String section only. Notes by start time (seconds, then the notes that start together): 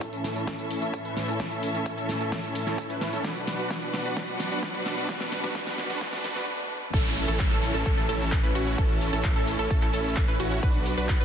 Already playing: A2 E3 C#4 A4 E5
3.24 B2 F#3 D4 B4 F#5
6.93 E3 A3 C#4
10.63 F#3 B3 D4